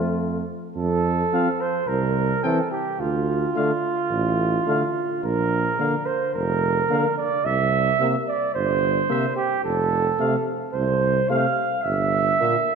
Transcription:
Already playing: tuba F2, trombone F3, french horn A3, flugelhorn C4, trumpet F4
0.76 tuba F2, flugelhorn A4
1.32 trombone F3, french horn C4, trumpet F5
1.61 flugelhorn C5
1.88 tuba C2, flugelhorn A#4
2.43 trombone E3, french horn C4, flugelhorn A4, trumpet G5
2.71 flugelhorn G4
2.99 tuba D2, flugelhorn F4
3.55 trombone D3, french horn A3, trumpet F5
4.10 tuba A1
4.67 trombone D3, french horn A3, trumpet F5
5.23 tuba A#1, flugelhorn A#4
5.78 trombone D3, french horn A#3, trumpet F5
6.06 flugelhorn C5
6.34 tuba F1, flugelhorn A#4
6.89 trombone D3, french horn A#3, trumpet F5
7.17 flugelhorn D5
7.45 tuba C2, flugelhorn E5
7.99 trombone C3, french horn A#3, trumpet E5
8.28 flugelhorn D5
8.54 tuba G1, flugelhorn C5
9.09 trombone C3, french horn A#3, trumpet E5
9.37 flugelhorn G4
9.64 tuba F1, flugelhorn A4
10.19 trombone C3, french horn A3, trumpet F5
10.73 tuba C2, flugelhorn C5
11.29 trombone C3, french horn A3, flugelhorn F5, trumpet F5
11.83 tuba G1, flugelhorn E5
12.40 trombone A#2, french horn A#3, trumpet E5

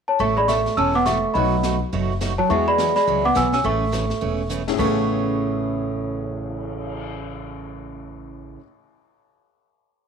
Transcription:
0.08 celesta C#5 A5
0.19 upright bass A1, steel-string acoustic guitar B2 E3 A3 C#4 A4, celesta E5 C#6, brush sweep
0.37 hollow-body jazz guitar G#3, celesta D5 B5
0.48 steel-string acoustic guitar B2 E3 A3 C#4 A4, celesta E5 C#6, snare, hi-hat pedal
0.66 snare
0.77 upright bass E1, steel-string acoustic guitar B2 E3 A3 C#4 A4, celesta A5 E6, brush sweep
0.95 hollow-body jazz guitar B3, celesta F#5 D6
1.06 steel-string acoustic guitar B2 E3 A3 C#4 A4, celesta E5 C#6, snare, hi-hat pedal
1.34 upright bass B1, steel-string acoustic guitar B2 F#3 A3 D#4 F#4, upright piano A3 B3 D#4 F#4, celesta D#5 B5, brush sweep
1.63 steel-string acoustic guitar B2 F#3 A3 D#4 F#4, snare, hi-hat pedal
1.92 upright bass F#1, steel-string acoustic guitar B2 F#3 A3 D#4 F#4, brush sweep
2.21 steel-string acoustic guitar B2 F#3 A3 D#4 F#4, snare, hi-hat pedal
2.38 hollow-body jazz guitar F#3, celesta C#5 A5
2.49 upright bass E2, steel-string acoustic guitar E3 F#3 B3 E4 G#4, upright piano G#3 B3 E4 F#4, hollow-body jazz guitar G#3, celesta E5 C#6, brush sweep
2.68 hollow-body jazz guitar G#3, celesta D5 B5
2.78 steel-string acoustic guitar E3 F#3 B3 E4 G#4, snare, hi-hat pedal
2.96 hollow-body jazz guitar G#3, celesta D5 B5, snare
3.07 upright bass C#2, steel-string acoustic guitar E3 F#3 B3 E4 G#4, brush sweep
3.25 hollow-body jazz guitar B3, celesta F#5 D6
3.35 upright bass B1, steel-string acoustic guitar E3 F#3 B3 E4 G#4, celesta G#5 E6, snare, hi-hat pedal
3.52 hollow-body jazz guitar C#4, celesta G#5 E6, snare
3.64 upright bass A1, steel-string acoustic guitar C#3 E3 A3 C#4 G#4, celesta E5 C#6, brush sweep
3.92 steel-string acoustic guitar C#3 E3 A3 C#4 G#4, snare, hi-hat pedal
4.10 snare
4.21 upright bass E1, steel-string acoustic guitar C#3 E3 A3 C#4 G#4, brush sweep
4.49 steel-string acoustic guitar C#3 E3 A3 C#4 G#4, hi-hat pedal
4.67 upright piano A3 C#4 E4 G#4, snare
4.74 upright piano A2 A3
4.78 upright bass A1, steel-string acoustic guitar A2 C#3 E3 A3 C#4 G#4, upright piano B3, celesta C#6, kick, crash
4.83 upright piano C#4 G#4
4.97 cymbal swell

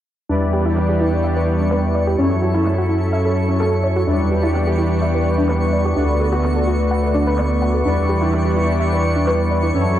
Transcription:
0.29 sub bass E2, analog synth pad E3 B3 D4 G4, supersaw synth G3 E4 B4 D5, synth pluck D4, synth texture C#6
0.53 synth pluck G4
0.65 synth pluck E4, finger snap
0.77 clap
0.89 synth pluck G4
1.00 synth pluck E4
1.24 synth pluck E5
1.36 synth pluck B4
1.60 synth pluck D4
1.71 synth pluck B4, clap
1.95 synth pluck D5
2.07 synth pluck G4
2.18 sub bass F#2, supersaw synth F#3 E4 A4 C#5, analog synth pad F#3 C#4 E4 A4, synth pluck C#4
2.42 synth pluck F#4
2.54 synth pluck E4, finger snap, clap
2.66 clap
2.78 synth pluck F#4
2.89 synth pluck E4
3.13 synth pluck E5
3.25 synth pluck A4
3.36 finger snap
3.49 synth pluck C#4
3.60 synth pluck A4, clap
3.84 synth pluck C#5, finger snap
3.96 synth pluck F#4
4.07 sub bass E2, analog synth pad E3 B3 D4 G4, supersaw synth G3 E4 B4 D5, synth pluck D4
4.31 synth pluck G4
4.43 synth pluck E4, finger snap
4.54 clap
4.67 synth pluck G4
4.78 synth pluck E4
5.02 synth pluck E5
5.14 synth pluck B4
5.38 synth pluck D4
5.49 synth pluck B4, clap
5.73 synth pluck D5
5.85 synth pluck G4
5.96 sub bass D2, analog synth pad D3 A3 F#4, supersaw synth A3 F#4 B4 D5, synth pluck D4
6.20 synth pluck A4
6.32 synth pluck F#4, finger snap, clap
6.43 clap
6.56 synth pluck A4
6.67 synth pluck F#4
6.91 synth pluck F#5
7.03 synth pluck B4
7.14 synth pluck D4, finger snap
7.27 synth pluck B4
7.38 synth pluck D5, clap
7.62 synth pluck F#5, finger snap
7.74 synth pluck A4
7.85 sub bass E2, analog synth pad E3 D4 G4, supersaw synth G3 E4 B4 D5, synth pluck D4
8.09 synth pluck G4
8.21 synth pluck E4, finger snap
8.32 clap
8.45 synth pluck G4
8.56 synth pluck E4
8.80 synth pluck E5
8.92 synth pluck B4
9.16 synth pluck D4
9.27 synth pluck B4, clap
9.51 synth pluck D5
9.63 synth pluck E4
9.74 sub bass F#2, analog synth pad F#3 C#4 E4 A4, supersaw synth F#3 E4 A4 C#5, synth pluck C#4

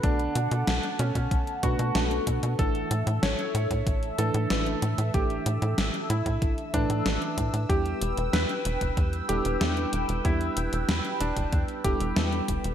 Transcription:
Already playing: analog synth pad A4 F#5
0.03 analog synth bass B1, fm electric piano D3 A3 B3 F#4 A4, electric grand piano D4, analog synth pad A5, kick, closed hi-hat
0.19 closed hi-hat
0.35 analog synth bass B2, closed hi-hat
0.51 analog synth bass B2, closed hi-hat
0.67 analog synth bass B1, snare, closed hi-hat
0.83 closed hi-hat
0.99 analog synth bass B2, electric grand piano C#4, closed hi-hat
1.15 analog synth bass B2, kick, closed hi-hat
1.31 analog synth bass B1, kick, closed hi-hat
1.47 closed hi-hat
1.63 analog synth bass B2, fm electric piano A3 B3 D4 F#4 B4, electric grand piano F#4, kick, closed hi-hat
1.79 analog synth bass B2, closed hi-hat
1.95 analog synth bass B1, fm electric piano A3 B3 D4 F#4 B4, snare, closed hi-hat
2.11 closed hi-hat
2.27 analog synth bass B2, kick, closed hi-hat
2.43 analog synth bass B2, closed hi-hat
2.59 analog synth bass A1, fm electric piano E3 A3 D4 E4 A4, electric grand piano A4, analog synth pad E5 E6, kick, closed hi-hat
2.75 closed hi-hat
2.91 analog synth bass A2, closed hi-hat
3.07 analog synth bass A2, closed hi-hat
3.23 analog synth bass A1, electric grand piano C#5, snare, closed hi-hat
3.39 closed hi-hat
3.55 analog synth bass A2, closed hi-hat
3.71 analog synth bass A2, kick, closed hi-hat
3.87 analog synth bass A1, kick, closed hi-hat
4.03 closed hi-hat
4.18 analog synth bass A2, fm electric piano E3 A3 D4 E4 B4, electric grand piano A4, closed hi-hat
4.34 analog synth bass A2, closed hi-hat
4.50 analog synth bass A1, fm electric piano E3 A3 D4 E4 B4, snare, closed hi-hat
4.66 closed hi-hat
4.82 analog synth bass A2, closed hi-hat
4.98 analog synth bass A2, closed hi-hat
5.14 analog synth bass A1, fm electric piano E3 A3 D4 E4 A4, electric grand piano G4, kick, closed hi-hat
5.30 closed hi-hat
5.46 analog synth bass A2, closed hi-hat
5.62 analog synth bass A2, closed hi-hat
5.78 analog synth bass A1, snare, closed hi-hat
5.94 closed hi-hat
6.10 analog synth bass A2, electric grand piano E4, closed hi-hat
6.26 analog synth bass A2, kick, closed hi-hat
6.42 analog synth bass A1, kick, closed hi-hat
6.58 closed hi-hat
6.74 analog synth bass A2, fm electric piano E3 A3 D4 E4 B4, electric grand piano D4, kick, closed hi-hat
6.90 analog synth bass A2, closed hi-hat
7.06 analog synth bass A1, snare, closed hi-hat
7.22 closed hi-hat
7.38 analog synth bass A2, kick, closed hi-hat
7.53 analog synth bass A2, closed hi-hat
7.69 analog synth bass E2, fm electric piano G3 B3 D4 E4 G4, electric grand piano G4, analog synth pad B4 G5, kick, closed hi-hat
7.86 closed hi-hat
8.01 analog synth bass E1, closed hi-hat
8.17 analog synth bass E1, closed hi-hat
8.33 analog synth bass E2, electric grand piano B4, snare, closed hi-hat
8.49 closed hi-hat
8.65 analog synth bass E1, closed hi-hat
8.81 analog synth bass E1, kick, closed hi-hat
8.97 analog synth bass E2, kick, closed hi-hat
9.13 closed hi-hat
9.29 analog synth bass E1, fm electric piano G3 B3 D4 E4 A4, electric grand piano G4, closed hi-hat
9.45 analog synth bass E1, closed hi-hat
9.61 analog synth bass E2, fm electric piano G3 B3 D4 E4 A4, snare, closed hi-hat
9.77 closed hi-hat
9.93 analog synth bass E1, closed hi-hat
10.09 analog synth bass E1, closed hi-hat
10.25 analog synth bass E2, fm electric piano G3 B3 D4 E4 G4, electric grand piano E4, kick, closed hi-hat
10.41 closed hi-hat
10.57 analog synth bass E1, closed hi-hat
10.73 analog synth bass E1, closed hi-hat
10.89 analog synth bass E2, snare, closed hi-hat
11.05 closed hi-hat
11.21 analog synth bass E1, electric grand piano D4, closed hi-hat
11.37 analog synth bass E1, kick, closed hi-hat
11.53 analog synth bass E2, kick, closed hi-hat
11.68 closed hi-hat
11.84 analog synth bass E1, fm electric piano G3 B3 D4 E4 A4, electric grand piano G4, kick, closed hi-hat
12.00 analog synth bass E1, closed hi-hat
12.16 analog synth bass E2, fm electric piano G3 B3 D4 E4 A4, snare, closed hi-hat
12.33 closed hi-hat
12.48 analog synth bass E1, kick, closed hi-hat
12.64 analog synth bass E1, closed hi-hat

